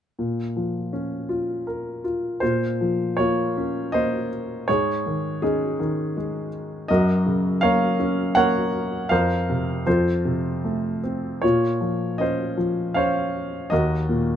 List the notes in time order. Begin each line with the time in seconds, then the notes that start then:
0.19 A#2
0.57 F3
0.93 C#4
1.29 F4
1.67 A#4
2.04 F4
2.40 A#2 F4 C5
2.81 F3
3.17 A#3 F4 C#5
3.57 C#4
3.92 A#3 C5 D#5
4.68 G#2 G#4 C#5
5.06 D#3
5.42 G#3 C#4 D#4 G#4
5.79 D#3
6.17 G#3
6.88 F#2 F#4 A#4 D#5
7.26 C#3
7.61 A#3 A#4 C#5 F5
8.00 C#4
8.35 A#3 A#4 C#5 F#5
9.09 F2 A#4 C5 F5
9.49 C3
9.87 F2 F4 A4 C5
10.25 C3
10.64 A3
11.04 C4
11.42 A#2 F4 C#5
11.81 F3
12.18 C#4 C5 D#5
12.57 F3
12.94 C#4 C5 C#5 F5
13.70 D#2 F#4 A#4 D#5
14.09 A#2